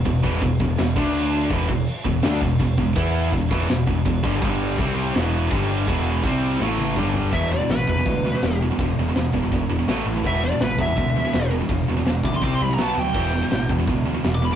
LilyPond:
<<
  \new Staff \with { instrumentName = "Lead electric guitar" } { \time 4/4 \key e \minor \tempo 4 = 165 r1 | r1 | r1 | r1 |
r1 | e''8 d''8 b'8 b'2 r8 | r1 | e''8 d''8 b'8 e''2 r8 |
r4. d'''16 c'''16 d'''16 c'''16 b''16 ais''16 a''8 g''8~ | g''4. r4. r16 d'''16 b''16 r16 | }
  \new Staff \with { instrumentName = "Distorted electric guitar" } { \clef bass \time 4/4 \key e \minor <e, b,>8 <e, b, e>8 <e, b,>8 <e, b,>8 <e, b,>8 <d a d'>4. | <e, b, e>8 <e, b,>8 r8 <e, b,>8 <d a d'>8 <e, b,>8 <e, b,>8 <e, b,>8 | <e b e'>4 <e, b,>8 <e, b, e>8 <e, b,>8 <e, b,>8 <e, b,>8 <g, d g>8 | <g, d g>4 <c g c'>4 <e, b, e>4 <g, d g>4 |
<e, b, e>4 <c g c'>4 <a, e a>4 <g, d g>4 | <e, b, e>8 <e, b,>16 <e, b,>16 <e, b,>8 <e, b,>16 <e, b,>16 <e, b,>8 <e, b,>16 <e, b,>16 <e, b,>8 <e, b,>16 <e, b,>16 | <e, b,>8 <e, b,>16 <e, b,>16 <e, b,>8 <e, b,>16 <e, b,>16 <e, b,>8 <e, b,>16 <e, b,>16 <a, e a>8 <a, e>16 <a, e>16 | <e, b, e>8 <e, b,>16 <e, b,>16 <e, b,>8 <e, b,>16 <e, b,>16 <e, b,>8 <e, b,>16 <e, b,>16 <e, b,>8 <e, b,>16 <e, b,>16 |
<e, b,>8 <e, b,>16 <e, b,>16 <e, b,>8 <e, b,>16 <e, b,>16 <c g c'>8 <c g>16 <c g>16 <b, fis b>8 <b, fis>16 <b, fis>16 | <e, b, e>8 <e, b,>16 <e, b,>16 <e, b,>8 <e, b,>16 <e, b,>16 <e, b,>8 <e, b,>16 <e, b,>16 <e, b,>8 <e, b,>16 <e, b,>16 | }
  \new Staff \with { instrumentName = "Distorted electric guitar" } { \clef bass \time 4/4 \key e \minor <e, b,>8 <e, b, e>8 <e, b,>8 <e, b,>8 <e, b,>8 <d a d'>4. | <e, b, e>8 <e, b,>8 r8 <e, b,>8 <d a d'>8 <e, b,>8 <e, b,>8 <e, b,>8 | <e b e'>4 <e, b,>8 <e, b, e>8 <e, b,>8 <e, b,>8 <e, b,>8 <g, d g>8 | <g, d g>4 <c g c'>4 <e, b, e>4 <g, d g>4 |
<e, b, e>4 <c g c'>4 <a, e a>4 <g, d g>4 | <e, b, e>8 <e, b,>16 <e, b,>16 <e, b,>8 <e, b,>16 <e, b,>16 <e, b,>8 <e, b,>16 <e, b,>16 <e, b,>8 <e, b,>16 <e, b,>16 | <e, b,>8 <e, b,>16 <e, b,>16 <e, b,>8 <e, b,>16 <e, b,>16 <e, b,>8 <e, b,>16 <e, b,>16 <a, e a>8 <a, e>16 <a, e>16 | <e, b, e>8 <e, b,>16 <e, b,>16 <e, b,>8 <e, b,>16 <e, b,>16 <e, b,>8 <e, b,>16 <e, b,>16 <e, b,>8 <e, b,>16 <e, b,>16 |
<e, b,>8 <e, b,>16 <e, b,>16 <e, b,>8 <e, b,>16 <e, b,>16 <c g c'>8 <c g>16 <c g>16 <b, fis b>8 <b, fis>16 <b, fis>16 | <e, b, e>8 <e, b,>16 <e, b,>16 <e, b,>8 <e, b,>16 <e, b,>16 <e, b,>8 <e, b,>16 <e, b,>16 <e, b,>8 <e, b,>16 <e, b,>16 | }
  \new Staff \with { instrumentName = "Distorted electric guitar" } { \clef bass \time 4/4 \key e \minor <e, b,>8 <e, b, e>8 <e, b,>8 <e, b,>8 <e, b,>8 <d a d'>4. | <e, b, e>8 <e, b,>8 r8 <e, b,>8 <d a d'>8 <e, b,>8 <e, b,>8 <e, b,>8 | <e b e'>4 <e, b,>8 <e, b, e>8 <e, b,>8 <e, b,>8 <e, b,>8 <g, d g>8 | <g, d g>4 <c g c'>4 <e, b, e>4 <g, d g>4 |
<e, b, e>4 <c g c'>4 <a, e a>4 <g, d g>4 | <e, b, e>2 <e, b, e>2 | <e, b, e>2 <e, b, e>4 <a, e a>4 | <e, b, e>2 <e, b, e>2 |
<e, b, e>2 <c g c'>4 <b, fis b>4 | <e, b, e>2 <e, b, e>2 | }
  \new Staff \with { instrumentName = "Picked electric bass" } { \clef bass \time 4/4 \key e \minor e,,8 e,,8 e,,8 e,,8 e,,8 d,4. | e,,8 e,,8 r8 e,,8 d,8 e,,8 e,,8 e,,8 | e,4 e,,8 e,,8 e,,8 e,,8 e,,8 g,,8 | g,,4 c,4 e,,4 g,,4 |
e,,4 c,4 a,,4 g,,4 | e,,4 a,,8 e,8 d,4 e,,4 | e,,8 e,,8 e,,8 e,,8 e,,8 e,,8 a,,8 a,,8 | e,,4 a,,8 e,8 d,4 e,,4 |
e,,8 e,,8 e,,8 d,8 c,8 c,8 b,,8 d,8 | e,,4 a,,8 e,8 d,4 e,,4 | }
  \new DrumStaff \with { instrumentName = "Drums" } \drummode { \time 4/4 <cymc bd>8 <cymc bd>8 <cymc bd>8 <cymc bd>8 <cymc sn>8 <cymc bd>8 cymc8 cymc8 | <cymc bd>8 <cymc bd>8 cymc8 <cymc bd>8 <cymc sn>8 <cymc bd>8 <cymc bd sn>8 <cymc bd>8 | <cymc bd>8 cymc8 <cymc bd>8 <cymc bd>8 <cymc sn>8 <cymc bd>8 <cymc bd>8 <cymc bd>8 | <cymc bd>8 cymc8 <cymc bd>8 cymc8 <cymc sn>8 cymc8 <cymc bd>8 cymc8 |
<cymc bd>8 cymc8 <cymc bd>8 cymc8 sn8 tommh8 toml8 tomfh8 | <hho bd>16 sn8. <hho sn>8 bd8 <hho bd>8. sn16 <hho sn>4 | <hho bd>4 <hho sn>8 bd8 <hho bd>4 <hho sn>4 | <hho bd>16 sn8. <hho sn>8 bd8 <hho bd>4 <hho sn>4 |
<hho bd>16 sn8. <hho sn>8 bd8 <hho bd>4 <hho sn>4 | <cymc bd>4 <hho sn>8 bd8 <hho bd>4 <hho sn>4 | }
>>